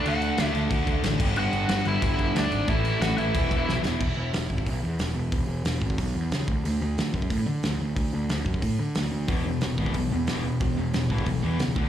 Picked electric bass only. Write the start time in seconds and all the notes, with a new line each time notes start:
0.06 D2
0.38 D2
0.55 D2
0.71 D2
0.87 D2
1.03 A1
1.20 G1
1.36 G1
1.53 G1
1.69 G1
1.85 G1
2.03 G1
2.19 G1
2.35 D2
2.51 G#1
2.68 A1
3.01 A1
3.18 A1
3.35 E1
3.51 E1
3.68 B1
3.85 E1
4.01 E1
4.16 E1
4.33 E1
4.50 G#1
4.67 B1
4.83 E2
4.99 E1
5.15 E1
5.32 E1
5.48 E1
5.65 E1
5.81 G#1
5.98 B1
6.15 E2
6.31 C#2
6.48 D2
6.65 D2
6.81 D2
6.98 D2
7.14 F#2
7.31 A2
7.48 D3
7.64 D2
7.81 D2
7.96 D2
8.14 D2
8.31 D2
8.45 F#2
8.62 A2
8.79 D3
8.97 D2
9.12 D2
9.28 E1
9.45 E1
9.62 E1
9.78 G#1
9.94 B1
10.12 E2
10.29 E1
10.44 E1
10.61 E1
10.78 E1
10.95 E1
11.10 G#1
11.27 B1
11.44 E2
11.60 C#2
11.76 D2